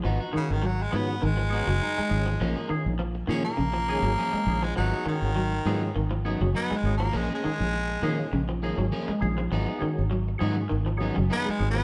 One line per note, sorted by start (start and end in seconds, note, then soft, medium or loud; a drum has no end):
0.04 0.17 G#1 medium
0.04 0.22 F3 medium
0.04 0.20 B3 medium
0.04 0.20 D#4 medium
0.04 0.19 F#4 medium
0.20 0.33 D#4 soft
0.20 0.33 F#4 soft
0.33 0.51 D#3 medium
0.33 0.57 D#3 medium
0.33 0.57 G#3 medium
0.33 0.57 C#4 medium
0.33 0.57 F#4 medium
0.33 muted clean electric guitar stroke soft
0.33 muted fingered electric bass stroke soft
0.37 0.54 C#3 medium
0.51 0.86 G#1 medium
0.51 0.68 D#3 medium
0.62 0.81 F#3 medium
0.62 0.84 F#3 medium
0.62 muted clean electric guitar stroke soft
0.80 0.97 G#3 medium
0.80 muted clean electric guitar stroke soft
0.91 1.18 G#2 medium
0.91 1.15 D#3 medium
0.91 1.10 F3 medium
0.91 1.16 G#3 medium
0.91 1.08 B3 medium
0.91 1.15 C#4 medium
0.91 1.15 F#4 medium
0.91 muted clean electric guitar stroke medium
0.96 1.26 B3 medium
1.09 muted clean electric guitar stroke soft
1.22 1.61 G#1 loud
1.22 1.32 D#3 medium
1.22 2.97 G#3 loud
1.37 1.55 F3 medium
1.37 muted clean electric guitar stroke soft
1.49 1.74 D#3 medium
1.49 1.74 G#3 medium
1.49 1.68 B3 soft
1.49 1.75 C#4 medium
1.49 1.68 D#4 medium
1.49 1.74 F#4 medium
1.49 1.67 F#4 medium
1.67 1.79 F#1 medium
1.67 1.85 F#3 medium
1.67 muted clean electric guitar stroke soft
1.82 2.00 D#4 medium
1.98 2.16 G#3 medium
1.98 muted fingered electric bass stroke soft
2.09 2.36 G#1 loud
2.09 2.34 D#3 medium
2.09 2.34 G#3 medium
2.09 2.33 C#4 medium
2.09 2.34 F4 medium
2.09 muted clean electric guitar stroke soft
2.26 2.35 F3 medium
2.26 muted clean electric guitar stroke soft
2.41 2.54 A#1 medium
2.41 2.56 F3 medium
2.41 2.59 F3 medium
2.41 2.56 A#3 medium
2.41 2.57 C#4 medium
2.41 muted clean electric guitar stroke medium
2.56 2.68 A#3 medium
2.56 2.70 G#4 medium
2.69 2.93 D#3 medium
2.69 2.87 D#3 medium
2.69 2.94 G#3 medium
2.69 2.94 C#4 medium
2.69 2.94 F4 medium
2.69 muted clean electric guitar stroke soft
2.69 muted fingered electric bass stroke soft
2.86 3.22 A#1 medium
2.99 3.17 F3 medium
2.99 muted clean electric guitar stroke soft
3.15 muted clean electric guitar stroke soft
3.27 3.54 A#2 medium
3.27 3.46 D#3 medium
3.27 3.52 D#3 medium
3.27 3.45 F3 medium
3.27 3.53 G#3 medium
3.27 3.44 A#3 medium
3.27 3.52 C#4 medium
3.27 3.44 C#4 medium
3.27 3.45 C#4 medium
3.27 3.52 F4 medium
3.27 3.43 G#4 medium
3.45 4.65 A#3 loud
3.45 muted clean electric guitar stroke soft
3.57 3.97 A#1 medium
3.57 3.67 C#3 medium
3.74 3.92 F3 medium
3.74 muted clean electric guitar stroke soft
3.88 4.13 D#3 medium
3.88 4.04 F3 medium
3.88 4.12 G#3 medium
3.88 4.04 A#3 medium
3.88 4.04 C#4 medium
3.88 4.12 C#4 medium
3.88 4.03 G#4 medium
3.88 4.13 G#4 medium
4.02 4.15 G#1 medium
4.02 4.22 F#3 medium
4.02 muted clean electric guitar stroke soft
4.18 4.36 F3 medium
4.18 4.37 C#4 medium
4.18 4.37 G#4 loud
4.33 4.51 G#3 medium
4.33 muted fingered electric bass stroke soft
4.47 4.72 A#1 loud
4.47 4.71 D#3 medium
4.47 4.71 G#3 medium
4.47 4.71 C#4 medium
4.47 4.71 F4 medium
4.47 muted clean electric guitar stroke soft
4.63 4.71 F3 medium
4.63 4.76 G#3 medium
4.63 muted clean electric guitar stroke soft
4.76 4.91 G#1 medium
4.76 4.94 F3 medium
4.76 5.06 F#3 medium
4.76 4.93 F#3 medium
4.76 4.93 B3 medium
4.76 4.93 D#4 medium
4.76 4.92 G#4 medium
4.93 5.05 B3 soft
4.93 5.05 D#4 soft
4.93 5.05 G#4 soft
5.06 5.24 D#3 medium
5.06 5.31 D#3 medium
5.06 6.22 D#3 loud
5.06 5.31 G#3 medium
5.06 5.31 C#4 medium
5.06 5.31 F#4 medium
5.06 muted clean electric guitar stroke soft
5.06 muted fingered electric bass stroke soft
5.22 5.59 G#1 medium
5.36 5.54 F#3 medium
5.36 muted clean electric guitar stroke soft
5.53 muted clean electric guitar stroke soft
5.65 5.91 G#2 medium
5.65 5.90 D#3 medium
5.65 5.85 F3 medium
5.65 5.82 F#3 medium
5.65 5.90 G#3 medium
5.65 5.82 B3 medium
5.65 5.90 C#4 medium
5.65 5.82 D#4 medium
5.65 5.90 F4 medium
5.65 5.81 G#4 medium
5.83 muted clean electric guitar stroke soft
5.96 6.34 G#1 medium
5.96 6.05 D#3 medium
6.11 6.29 F3 medium
6.11 muted clean electric guitar stroke soft
6.25 6.49 D#3 medium
6.25 6.41 F#3 medium
6.25 6.49 G#3 medium
6.25 6.41 B3 medium
6.25 6.49 C#4 medium
6.25 6.40 D#4 medium
6.25 6.49 F#4 loud
6.25 6.40 G#4 medium
6.41 6.53 F#1 medium
6.41 6.59 F#3 medium
6.41 muted clean electric guitar stroke soft
6.55 6.73 F#3 medium
6.55 6.78 B3 loud
6.55 6.74 D#4 medium
6.55 muted clean electric guitar stroke medium
6.70 6.89 G#3 medium
6.70 muted fingered electric bass stroke soft
6.76 6.95 G#3 medium
6.83 7.09 G#1 loud
6.83 7.09 D#3 medium
6.83 7.09 G#3 medium
6.83 7.08 C#4 medium
6.83 7.09 F#4 medium
6.83 muted clean electric guitar stroke soft
6.97 7.08 F3 medium
6.97 7.18 A#3 loud
6.97 muted clean electric guitar stroke soft
7.13 7.28 A#1 medium
7.13 7.30 F3 medium
7.13 7.34 G#3 medium
7.13 7.29 A#3 medium
7.13 7.29 C#4 medium
7.13 7.29 G#4 medium
7.13 muted clean electric guitar stroke medium
7.30 7.43 A#3 soft
7.30 7.43 C#4 soft
7.30 7.43 G#4 medium
7.35 8.50 G#3 loud
7.43 7.62 D#3 medium
7.43 7.68 D#3 medium
7.43 7.68 G#3 medium
7.43 7.68 C#4 medium
7.43 7.68 F4 medium
7.43 muted clean electric guitar stroke soft
7.43 muted fingered electric bass stroke soft
7.60 7.97 A#1 medium
7.74 muted clean electric guitar stroke soft
7.89 muted clean electric guitar stroke soft
8.02 8.28 A#2 medium
8.02 8.21 D#3 medium
8.02 8.27 D#3 medium
8.02 8.19 F3 medium
8.02 8.27 G#3 medium
8.02 8.19 A#3 medium
8.02 8.19 C#4 medium
8.02 8.27 C#4 medium
8.02 8.27 F4 medium
8.19 muted clean electric guitar stroke soft
8.33 8.71 A#1 medium
8.33 8.43 C#3 medium
8.49 8.67 F3 medium
8.49 muted clean electric guitar stroke soft
8.62 8.86 D#3 loud
8.62 8.79 F3 medium
8.62 8.86 G#3 medium
8.62 8.78 A#3 medium
8.62 8.87 C#4 medium
8.62 8.87 F4 loud
8.62 8.78 G#4 medium
8.62 muted clean electric guitar stroke medium
8.78 8.90 G#1 medium
8.78 8.97 F#3 medium
8.78 muted clean electric guitar stroke medium
8.92 9.11 F3 medium
8.92 9.11 A#3 medium
8.92 9.11 C#4 medium
8.92 9.11 G#4 loud
9.08 9.26 G#3 medium
9.08 muted fingered electric bass stroke soft
9.20 9.47 A#1 loud
9.20 9.45 D#3 medium
9.20 9.45 G#3 medium
9.20 9.46 C#4 medium
9.20 9.46 F4 medium
9.20 muted clean electric guitar stroke soft
9.38 9.46 F3 medium
9.38 muted clean electric guitar stroke soft
9.52 9.65 G#1 medium
9.52 9.70 F3 medium
9.52 9.68 F#3 medium
9.52 9.68 B3 medium
9.52 9.67 D#4 loud
9.52 9.67 G#4 medium
9.68 9.82 B3 medium
9.68 9.82 D#4 soft
9.68 9.82 G#4 medium
9.79 10.04 D#3 medium
9.79 10.00 D#3 medium
9.79 10.04 G#3 medium
9.79 10.04 C#4 medium
9.79 10.04 F#4 medium
9.79 muted fingered electric bass stroke soft
9.83 muted clean electric guitar stroke soft
9.99 10.35 G#1 medium
10.11 10.29 F#3 medium
10.11 muted clean electric guitar stroke soft
10.28 muted clean electric guitar stroke soft
10.38 10.66 G#2 medium
10.38 10.64 D#3 medium
10.38 10.59 F3 medium
10.38 10.57 F#3 medium
10.38 10.64 G#3 medium
10.38 10.56 B3 medium
10.38 10.64 C#4 medium
10.38 10.56 D#4 medium
10.38 10.63 F#4 loud
10.38 10.56 G#4 medium
10.57 muted clean electric guitar stroke soft
10.69 11.10 G#1 medium
10.69 10.79 D#3 medium
10.86 11.04 F3 medium
10.86 muted clean electric guitar stroke soft
10.97 11.23 D#3 medium
10.97 11.16 F#3 medium
10.97 11.23 G#3 medium
10.97 11.16 B3 medium
10.97 11.23 C#4 medium
10.97 11.23 F#4 loud
11.01 11.17 D#4 medium
11.01 11.17 G#4 medium
11.16 11.29 F#1 medium
11.16 11.34 F#3 medium
11.16 muted clean electric guitar stroke soft
11.30 11.49 F#3 medium
11.30 11.49 B3 medium
11.30 11.52 B3 loud
11.30 11.49 D#4 medium
11.30 11.49 G#4 medium
11.45 11.64 G#3 medium
11.45 muted fingered electric bass stroke soft
11.50 11.69 G#3 loud
11.59 11.84 G#1 loud
11.59 11.83 D#3 medium
11.59 11.83 G#3 medium
11.59 11.83 C#4 medium
11.59 11.83 F#4 medium
11.59 muted clean electric guitar stroke soft
11.71 11.83 F3 medium
11.71 11.84 B3 loud
11.77 muted clean electric guitar stroke soft